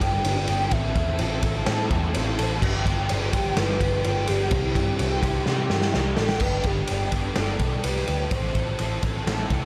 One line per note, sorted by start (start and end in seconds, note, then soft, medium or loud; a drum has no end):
0.00 0.24 G1 loud
0.00 0.25 G2 medium
0.00 0.26 D3 medium
0.00 0.24 B3 medium
0.00 0.25 D4 medium
0.00 0.27 G4 medium
0.00 0.74 G5 loud
0.00 kick medium
0.00 ride medium
0.04 0.24 G3 medium
0.24 0.48 G1 medium
0.24 0.50 G3 medium
0.24 0.48 B3 medium
0.24 0.48 D4 medium
0.24 0.47 G4 medium
0.24 ride loud
0.48 0.71 G1 medium
0.48 0.72 G3 medium
0.48 0.72 B3 medium
0.48 0.71 D4 medium
0.48 0.75 G4 medium
0.48 ride medium
0.71 0.95 A1 loud
0.71 1.20 A2 loud
0.71 1.18 E3 medium
0.71 0.98 C4 loud
0.71 0.97 E4 loud
0.71 1.67 E5 loud
0.71 kick loud
0.71 ride medium
0.75 0.95 A4 medium
0.96 1.19 E2 loud
0.96 1.20 E4 medium
0.96 1.21 A4 medium
0.96 kick medium
0.96 ride medium
1.00 1.19 C4 medium
1.19 1.43 A1 medium
1.19 1.65 E3 medium
1.19 1.45 C4 medium
1.19 1.43 E4 medium
1.19 1.42 A4 medium
1.19 ride loud
1.43 1.66 A1 loud
1.43 1.66 C4 medium
1.43 1.67 E4 medium
1.43 1.67 A4 medium
1.43 kick medium
1.43 ride medium
1.65 2.14 A2 medium
1.65 1.91 A2 loud
1.65 2.12 E3 medium
1.65 1.92 C4 medium
1.65 1.91 E4 loud
1.65 1.88 A4 medium
1.65 snare loud
1.65 ride medium
1.90 2.14 E2 loud
1.90 2.14 C4 medium
1.90 2.15 E4 medium
1.90 2.15 A4 medium
1.90 kick medium
1.90 ride medium
2.13 2.39 A1 loud
2.13 2.60 E3 medium
2.13 2.39 C4 medium
2.13 2.38 E4 medium
2.13 2.36 A4 medium
2.13 ride loud
2.37 2.62 A1 medium
2.37 2.62 C4 medium
2.37 2.61 E4 medium
2.37 2.60 A4 medium
2.37 ride medium
2.61 2.85 G1 loud
2.61 3.09 G2 medium
2.61 3.10 D3 loud
2.61 2.87 F3 medium
2.61 2.87 G3 loud
2.61 2.86 B3 loud
2.61 2.84 G4 loud
2.61 kick loud
2.61 crash loud
2.85 3.09 G1 medium
2.85 3.08 F3 medium
2.85 3.10 G3 medium
2.85 3.10 B3 medium
2.85 3.12 G4 medium
2.85 kick medium
2.85 ride medium
3.09 3.56 G1 loud
3.09 3.35 F3 medium
3.09 3.34 G3 medium
3.09 3.32 B3 medium
3.09 3.32 G4 medium
3.09 ride loud
3.32 3.57 F3 medium
3.32 3.58 G3 medium
3.32 3.58 B3 medium
3.32 3.59 G4 medium
3.32 3.60 G4 loud
3.32 kick loud
3.32 ride medium
3.56 3.80 G1 medium
3.56 4.04 G2 medium
3.56 4.05 D3 loud
3.56 3.82 F3 loud
3.56 3.82 G3 medium
3.56 3.81 B3 medium
3.56 3.80 G4 loud
3.56 4.29 B4 loud
3.56 snare loud
3.56 ride loud
3.80 4.04 G1 medium
3.80 4.03 F3 medium
3.80 4.05 G3 medium
3.80 4.05 B3 medium
3.80 4.07 G4 medium
3.80 kick medium
3.80 ride medium
4.04 4.28 G1 loud
4.04 4.29 F3 medium
4.04 4.29 G3 medium
4.04 4.28 B3 medium
4.04 4.27 G4 medium
4.04 ride loud
4.27 4.51 G1 medium
4.27 4.52 F3 medium
4.27 4.53 G3 medium
4.27 4.51 B3 medium
4.27 6.17 G4 loud
4.27 4.54 G4 medium
4.27 ride medium
4.51 4.75 C2 loud
4.51 4.99 C3 medium
4.51 4.97 E3 medium
4.51 4.77 G3 loud
4.51 4.75 E4 medium
4.51 4.73 G4 loud
4.51 kick loud
4.51 ride loud
4.75 4.99 G2 medium
4.75 4.98 G3 medium
4.75 4.99 E4 medium
4.75 5.00 G4 medium
4.75 kick medium
4.75 ride medium
4.98 5.22 C2 loud
4.98 5.45 E3 medium
4.98 5.23 G3 medium
4.98 5.22 E4 medium
4.98 5.20 G4 medium
4.98 ride loud
5.21 5.46 C2 loud
5.21 5.46 G3 medium
5.21 5.47 E4 medium
5.21 5.48 G4 medium
5.21 kick medium
5.21 ride medium
5.46 5.94 C3 medium
5.46 5.70 C3 loud
5.46 5.92 E3 medium
5.46 5.71 G3 medium
5.46 5.70 E4 loud
5.46 5.68 G4 loud
5.46 snare medium
5.69 5.94 G2 medium
5.69 5.94 G3 medium
5.69 5.95 E4 medium
5.69 5.96 G4 medium
5.69 snare medium
5.82 snare medium
5.94 6.18 C2 medium
5.94 6.40 E3 medium
5.94 6.19 G3 medium
5.94 6.18 E4 medium
5.94 6.16 G4 medium
5.94 snare loud
6.17 6.40 A1 medium
6.17 6.41 G3 medium
6.17 6.41 E4 medium
6.17 6.40 G4 medium
6.17 6.42 A4 loud
6.17 snare loud
6.29 snare loud
6.40 6.59 G1 medium
6.40 6.89 G2 loud
6.40 6.89 D3 medium
6.40 6.68 G3 medium
6.40 6.66 B3 medium
6.40 6.67 B4 loud
6.40 kick loud
6.40 crash loud
6.44 6.65 D4 loud
6.44 6.65 G4 medium
6.63 6.83 G1 medium
6.63 6.91 D4 medium
6.63 6.93 G4 medium
6.63 7.13 G4 loud
6.63 kick medium
6.63 ride medium
6.68 6.89 G3 medium
6.68 6.90 B3 medium
6.87 7.08 G1 medium
6.87 7.17 G3 medium
6.87 7.15 B3 medium
6.87 ride loud
6.92 7.13 D4 medium
6.92 7.13 G4 medium
7.12 7.31 G1 medium
7.12 7.39 D4 medium
7.12 7.40 G4 medium
7.12 kick medium
7.12 ride medium
7.16 7.38 G3 medium
7.16 7.38 B3 medium
7.34 7.84 G2 medium
7.34 7.85 A4 loud
7.34 snare loud
7.34 ride medium
7.38 7.55 G1 medium
7.38 7.85 D3 medium
7.38 7.64 G3 medium
7.38 7.62 B3 medium
7.38 7.61 D4 loud
7.38 7.61 G4 loud
7.59 7.78 B1 loud
7.59 7.86 D4 medium
7.59 7.88 G4 medium
7.59 kick medium
7.59 ride medium
7.64 7.84 G3 medium
7.64 7.84 B3 medium
7.84 8.02 C2 medium
7.84 8.12 G3 medium
7.84 8.10 B3 medium
7.84 8.09 D4 medium
7.84 8.34 B4 medium
7.84 ride loud
7.88 8.08 G4 medium
7.96 snare soft
8.07 8.26 D2 medium
8.07 8.32 B3 medium
8.07 8.31 D4 medium
8.07 8.34 G4 medium
8.07 ride medium
8.12 8.32 G3 medium
8.31 8.50 A1 loud
8.31 8.79 A2 medium
8.31 8.78 E3 medium
8.31 8.57 C4 medium
8.31 8.56 E4 loud
8.31 8.54 A4 medium
8.31 9.03 C5 loud
8.31 kick loud
8.31 ride medium
8.55 8.73 A1 medium
8.55 8.79 C4 medium
8.55 8.80 E4 medium
8.55 8.81 A4 medium
8.55 kick medium
8.55 ride medium
8.79 8.98 A1 medium
8.79 9.27 E3 medium
8.79 9.05 C4 medium
8.79 9.03 E4 medium
8.79 9.02 A4 medium
8.79 ride medium
9.03 9.21 A1 medium
9.03 9.27 C4 medium
9.03 9.28 E4 medium
9.03 9.29 A4 medium
9.03 kick medium
9.03 ride medium
9.27 9.45 A1 medium
9.27 9.65 A2 medium
9.27 9.65 E3 medium
9.27 9.52 C4 medium
9.27 9.51 E4 loud
9.27 9.49 A4 medium
9.27 snare loud
9.27 ride medium
9.50 9.65 C2 loud
9.50 9.65 C4 medium
9.50 9.65 E4 medium
9.50 9.65 A4 medium
9.50 kick medium
9.50 ride medium